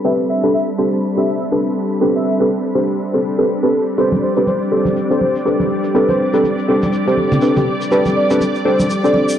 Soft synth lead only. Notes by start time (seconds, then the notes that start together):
0.05 E5
0.29 E5
0.54 E5
1.17 E5
2.16 E5
3.63 A4
3.98 C5
4.23 C5
4.47 C5
5.10 C5
6.09 C5
7.56 G4
7.92 D5
8.16 D5
8.41 D5
9.04 D5